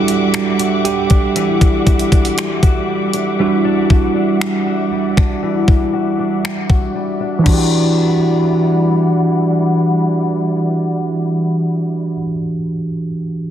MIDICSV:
0, 0, Header, 1, 5, 480
1, 0, Start_track
1, 0, Key_signature, 1, "minor"
1, 0, Tempo, 1016949
1, 1601, Time_signature, 4, 2, 24, 8
1, 6374, End_track
2, 0, Start_track
2, 0, Title_t, "String section"
2, 0, Program_c, 0, 48
2, 0, Note_on_c, 0, 55, 77
2, 0, Note_on_c, 0, 76, 66
2, 0, Note_on_c, 0, 78, 69
2, 0, Note_on_c, 0, 86, 87
2, 3501, Note_off_c, 0, 86, 0
2, 3502, Note_off_c, 0, 55, 0
2, 3502, Note_off_c, 0, 76, 0
2, 3502, Note_off_c, 0, 78, 0
2, 3520, Note_on_c, 0, 52, 68
2, 3520, Note_on_c, 0, 55, 61
2, 3520, Note_on_c, 0, 64, 65
2, 3520, Note_on_c, 0, 78, 76
2, 3521, Note_on_c, 0, 74, 63
2, 5764, Note_off_c, 0, 55, 0
2, 5765, Note_off_c, 0, 52, 0
2, 5765, Note_off_c, 0, 64, 0
2, 5765, Note_off_c, 0, 74, 0
2, 5765, Note_off_c, 0, 78, 0
2, 6374, End_track
3, 0, Start_track
3, 0, Title_t, "Tine electric piano"
3, 0, Program_c, 1, 4
3, 0, Control_c, 1, 64, 127
3, 0, Note_on_c, 1, 55, 57
3, 0, Note_on_c, 1, 62, 50
3, 0, Note_on_c, 1, 66, 56
3, 0, Note_on_c, 1, 67, 102
3, 0, Note_on_c, 1, 69, 98
3, 395, Note_off_c, 1, 67, 0
3, 400, Note_on_c, 1, 67, 87
3, 1604, Note_off_c, 1, 55, 0
3, 1604, Note_on_c, 1, 55, 52
3, 1607, Note_off_c, 1, 62, 0
3, 1607, Note_on_c, 1, 62, 48
3, 1610, Note_off_c, 1, 66, 0
3, 1610, Note_on_c, 1, 66, 60
3, 2303, Note_off_c, 1, 55, 0
3, 2305, Note_off_c, 1, 62, 0
3, 2306, Note_off_c, 1, 66, 0
3, 3022, Note_off_c, 1, 67, 0
3, 3488, Note_on_c, 1, 52, 74
3, 3511, Note_on_c, 1, 62, 70
3, 3527, Control_c, 1, 64, 0
3, 3532, Note_off_c, 1, 69, 0
3, 3535, Note_on_c, 1, 66, 69
3, 3558, Note_on_c, 1, 67, 84
3, 3620, Control_c, 1, 64, 127
3, 5732, Note_off_c, 1, 52, 0
3, 5756, Note_off_c, 1, 62, 0
3, 5779, Note_off_c, 1, 66, 0
3, 5802, Note_off_c, 1, 67, 0
3, 6374, End_track
4, 0, Start_track
4, 0, Title_t, "Steel-string acoustic guitar"
4, 0, Program_c, 2, 25
4, 0, Note_on_c, 2, 52, 80
4, 0, Note_on_c, 2, 55, 62
4, 0, Note_on_c, 2, 66, 70
4, 41, Note_on_c, 2, 62, 59
4, 159, Note_off_c, 2, 55, 0
4, 161, Note_on_c, 2, 55, 59
4, 278, Note_off_c, 2, 66, 0
4, 280, Note_on_c, 2, 66, 69
4, 398, Note_off_c, 2, 55, 0
4, 400, Note_on_c, 2, 55, 61
4, 519, Note_off_c, 2, 62, 0
4, 521, Note_on_c, 2, 62, 53
4, 638, Note_off_c, 2, 52, 0
4, 640, Note_on_c, 2, 52, 78
4, 758, Note_off_c, 2, 62, 0
4, 760, Note_on_c, 2, 62, 55
4, 879, Note_off_c, 2, 66, 0
4, 881, Note_on_c, 2, 66, 64
4, 998, Note_off_c, 2, 62, 0
4, 1000, Note_on_c, 2, 62, 55
4, 1120, Note_off_c, 2, 55, 0
4, 1122, Note_on_c, 2, 55, 58
4, 1239, Note_off_c, 2, 66, 0
4, 1241, Note_on_c, 2, 66, 62
4, 1359, Note_off_c, 2, 55, 0
4, 1360, Note_on_c, 2, 55, 61
4, 1479, Note_off_c, 2, 62, 0
4, 1481, Note_on_c, 2, 62, 59
4, 1598, Note_off_c, 2, 52, 0
4, 1600, Note_on_c, 2, 52, 74
4, 1718, Note_off_c, 2, 62, 0
4, 1720, Note_on_c, 2, 62, 59
4, 1838, Note_off_c, 2, 66, 0
4, 1840, Note_on_c, 2, 66, 68
4, 1960, Note_off_c, 2, 62, 0
4, 1962, Note_on_c, 2, 62, 58
4, 2079, Note_off_c, 2, 55, 0
4, 2081, Note_on_c, 2, 55, 58
4, 2197, Note_off_c, 2, 66, 0
4, 2199, Note_on_c, 2, 66, 63
4, 2318, Note_off_c, 2, 55, 0
4, 2320, Note_on_c, 2, 55, 58
4, 2438, Note_off_c, 2, 62, 0
4, 2440, Note_on_c, 2, 62, 54
4, 2558, Note_off_c, 2, 52, 0
4, 2560, Note_on_c, 2, 52, 80
4, 2678, Note_off_c, 2, 62, 0
4, 2680, Note_on_c, 2, 62, 56
4, 2799, Note_off_c, 2, 66, 0
4, 2801, Note_on_c, 2, 66, 65
4, 2919, Note_off_c, 2, 62, 0
4, 2921, Note_on_c, 2, 62, 53
4, 3039, Note_off_c, 2, 55, 0
4, 3041, Note_on_c, 2, 55, 58
4, 3158, Note_off_c, 2, 66, 0
4, 3160, Note_on_c, 2, 66, 60
4, 3279, Note_off_c, 2, 55, 0
4, 3281, Note_on_c, 2, 55, 59
4, 3397, Note_off_c, 2, 62, 0
4, 3399, Note_on_c, 2, 62, 61
4, 3494, Note_off_c, 2, 52, 0
4, 3496, Note_on_c, 2, 52, 77
4, 3524, Note_off_c, 2, 55, 0
4, 3526, Note_on_c, 2, 55, 82
4, 3549, Note_off_c, 2, 62, 0
4, 3551, Note_on_c, 2, 62, 89
4, 3571, Note_off_c, 2, 66, 0
4, 3573, Note_on_c, 2, 66, 79
4, 5759, Note_off_c, 2, 52, 0
4, 5789, Note_off_c, 2, 55, 0
4, 5814, Note_off_c, 2, 62, 0
4, 5836, Note_off_c, 2, 66, 0
4, 6374, End_track
5, 0, Start_track
5, 0, Title_t, "Drums"
5, 39, Note_on_c, 9, 42, 53
5, 86, Note_off_c, 9, 42, 0
5, 159, Note_on_c, 9, 42, 65
5, 162, Note_on_c, 9, 26, 104
5, 207, Note_off_c, 9, 42, 0
5, 209, Note_off_c, 9, 26, 0
5, 281, Note_on_c, 9, 42, 53
5, 328, Note_off_c, 9, 42, 0
5, 402, Note_on_c, 9, 42, 77
5, 449, Note_off_c, 9, 42, 0
5, 519, Note_on_c, 9, 42, 46
5, 522, Note_on_c, 9, 36, 86
5, 566, Note_off_c, 9, 42, 0
5, 569, Note_off_c, 9, 36, 0
5, 641, Note_on_c, 9, 42, 66
5, 689, Note_off_c, 9, 42, 0
5, 761, Note_on_c, 9, 36, 91
5, 763, Note_on_c, 9, 42, 46
5, 808, Note_off_c, 9, 36, 0
5, 810, Note_off_c, 9, 42, 0
5, 881, Note_on_c, 9, 36, 83
5, 882, Note_on_c, 9, 42, 49
5, 928, Note_off_c, 9, 36, 0
5, 929, Note_off_c, 9, 42, 0
5, 941, Note_on_c, 9, 42, 50
5, 989, Note_off_c, 9, 42, 0
5, 1001, Note_on_c, 9, 36, 91
5, 1002, Note_on_c, 9, 42, 53
5, 1048, Note_off_c, 9, 36, 0
5, 1049, Note_off_c, 9, 42, 0
5, 1062, Note_on_c, 9, 42, 53
5, 1109, Note_off_c, 9, 42, 0
5, 1122, Note_on_c, 9, 42, 61
5, 1126, Note_on_c, 9, 26, 104
5, 1169, Note_off_c, 9, 42, 0
5, 1173, Note_off_c, 9, 26, 0
5, 1241, Note_on_c, 9, 36, 99
5, 1241, Note_on_c, 9, 42, 42
5, 1288, Note_off_c, 9, 36, 0
5, 1288, Note_off_c, 9, 42, 0
5, 1480, Note_on_c, 9, 42, 59
5, 1527, Note_off_c, 9, 42, 0
5, 1842, Note_on_c, 9, 36, 78
5, 1889, Note_off_c, 9, 36, 0
5, 2084, Note_on_c, 9, 26, 99
5, 2131, Note_off_c, 9, 26, 0
5, 2442, Note_on_c, 9, 36, 88
5, 2445, Note_on_c, 9, 26, 59
5, 2489, Note_off_c, 9, 36, 0
5, 2492, Note_off_c, 9, 26, 0
5, 2681, Note_on_c, 9, 36, 88
5, 2728, Note_off_c, 9, 36, 0
5, 3044, Note_on_c, 9, 26, 104
5, 3091, Note_off_c, 9, 26, 0
5, 3161, Note_on_c, 9, 36, 94
5, 3208, Note_off_c, 9, 36, 0
5, 3521, Note_on_c, 9, 36, 95
5, 3521, Note_on_c, 9, 49, 76
5, 3568, Note_off_c, 9, 36, 0
5, 3568, Note_off_c, 9, 49, 0
5, 6374, End_track
0, 0, End_of_file